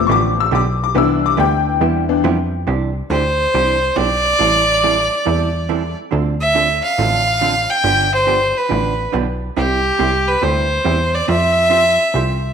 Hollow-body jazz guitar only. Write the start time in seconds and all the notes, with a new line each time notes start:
0.09 D3 F3 B3 D4 G4
0.51 D3 F3 B3 D4 G4
0.95 C3 G3 B3 E4 G4
1.37 C3 G3 B3 E4 G4
1.81 C3 G3 B3 E4 G4
2.24 C3 G3 B3 E4 G4
2.67 C3 E3 D4 G4
3.10 C3 E3 D4 G4
3.54 C3 E3 D4 G4
3.96 C3 E3 D4 G4
4.39 E3 G3 C4 E4 A4
4.83 E3 G3 C4 E4 A4
5.25 E3 G3 C4 E4 A4
5.69 E3 G3 C4 E4 A4
6.11 D3 F3 C4 D4 A4
6.55 D3 F3 C4 D4 A4
6.99 D3 F3 C4 D4 A4
7.41 D3 F3 C4 D4 A4
7.84 D3 F3 B3 D4 G4
8.27 D3 F3 B3 D4 G4
8.69 D3 F3 B3 D4 G4
9.12 D3 F3 B3 D4 G4
9.56 C3 G3 C4 E4 G4
9.99 C3 G3 C4 E4 G4
10.42 C3 G3 C4 E4 G4
10.84 C3 G3 C4 E4 G4
11.28 F3 C4 F4 G4 C5
11.70 F3 C4 F4 G4 C5
12.15 F3 C4 F4 G4 C5